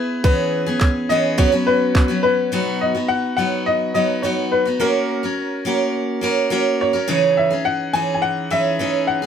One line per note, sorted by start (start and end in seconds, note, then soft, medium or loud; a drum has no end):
0.00 0.23 B3 soft
0.00 0.24 E4 medium
0.00 0.23 G#4 medium
0.00 0.23 B4 medium
0.24 0.67 E3 medium
0.24 0.67 B3 medium
0.24 0.66 C#4 medium
0.24 0.65 G#4 medium
0.24 0.77 B4 medium
0.24 kick loud
0.66 1.09 B3 soft
0.66 1.10 C#4 soft
0.66 1.09 G#4 medium
0.80 kick loud
0.80 clap medium
1.09 1.38 E3 medium
1.09 1.37 B3 medium
1.09 1.37 C#4 medium
1.09 1.39 G#4 medium
1.09 1.39 D#5 medium
1.38 1.52 F#2 medium
1.38 1.52 C#3 medium
1.38 1.52 F#3 medium
1.38 1.52 B3 medium
1.38 1.52 C#4 medium
1.38 1.51 F#4 medium
1.38 1.67 C#5 medium
1.38 kick loud
1.52 2.10 F#3 soft
1.52 2.10 B3 soft
1.52 2.08 C#4 soft
1.52 2.08 F#4 medium
1.67 2.20 B4 medium
1.95 kick loud
1.95 clap loud
2.08 2.51 F#3 soft
2.08 2.52 B3 soft
2.08 2.52 C#4 soft
2.08 2.51 F#4 soft
2.23 2.82 B4 medium
2.52 2.95 B2 medium
2.52 2.95 F#3 medium
2.52 2.95 B3 medium
2.52 2.94 D#4 medium
2.52 2.93 F#4 medium
2.81 3.10 D#5 medium
2.95 3.37 B3 soft
2.95 3.38 D#4 soft
2.95 3.38 F#4 soft
3.08 3.35 F#5 medium
3.37 3.94 F#3 medium
3.37 3.94 B3 medium
3.37 3.95 D#4 medium
3.37 3.97 F#4 medium
3.37 3.67 F#5 medium
3.66 3.93 D#5 medium
3.94 4.22 F#3 medium
3.94 4.23 B3 medium
3.94 4.23 D#4 soft
3.94 4.24 F#4 medium
3.94 4.24 D#5 medium
4.22 4.66 F#3 soft
4.22 4.66 B3 medium
4.22 4.66 D#4 medium
4.22 4.64 F#4 medium
4.22 4.29 C#5 medium
4.52 4.78 B4 medium
4.65 4.80 B3 soft
4.65 4.81 D#4 soft
4.65 4.80 F#4 soft
4.80 5.23 A#3 medium
4.80 5.23 C#4 medium
4.80 5.23 F#4 medium
4.80 5.90 A#4 medium
4.80 5.22 A#4 medium
5.23 5.65 C#4 soft
5.23 5.65 F#4 soft
5.23 5.66 A#4 soft
5.65 6.20 A#3 medium
5.65 6.22 C#4 medium
5.65 6.22 F#4 medium
5.65 6.22 A#4 medium
6.21 6.49 A#3 medium
6.21 6.50 C#4 medium
6.21 6.50 F#4 medium
6.21 6.51 A#4 medium
6.50 6.94 A#3 medium
6.50 6.94 C#4 medium
6.50 6.93 F#4 medium
6.50 6.92 A#4 medium
6.81 7.39 C#5 medium
6.93 7.07 C#4 soft
6.93 7.08 F#4 soft
6.93 7.08 A#4 soft
7.08 7.51 C#3 medium
7.08 7.51 E3 medium
7.08 7.51 C#4 medium
7.08 7.50 D#4 medium
7.08 7.49 G#4 medium
7.37 7.64 E5 medium
7.51 7.93 C#4 soft
7.51 7.94 D#4 soft
7.51 7.94 G#4 soft
7.65 7.95 F#5 medium
7.93 8.49 E3 medium
7.93 8.50 C#4 medium
7.93 8.51 D#4 medium
7.93 8.51 G#4 medium
7.93 8.13 G#5 medium
8.14 8.22 G#5 medium
8.22 8.49 F#5 medium
8.51 8.78 E3 medium
8.51 8.79 C#4 medium
8.51 8.80 D#4 medium
8.51 8.80 G#4 medium
8.51 9.10 E5 medium
8.79 9.22 E3 medium
8.79 9.23 C#4 medium
8.79 9.22 D#4 medium
8.79 9.21 G#4 medium
9.07 9.26 F#5 medium
9.22 9.26 G#4 soft